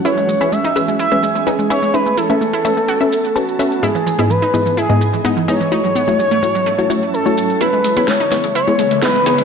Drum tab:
HH |----------------|----------------|----------------|----------------|
SH |xxxxxxxxxxxxxxxx|xxxxxxxxxxxxxxxx|xxxxxxxxxxxxxxxx|xxxxxxxxxxxxxxxx|
SD |----------------|----------------|----------------|----------------|

HH |x-oxx-oxx-oxx-ox|
SH |xxxxxxxxxxxxxxxx|
SD |----o-o-----o---|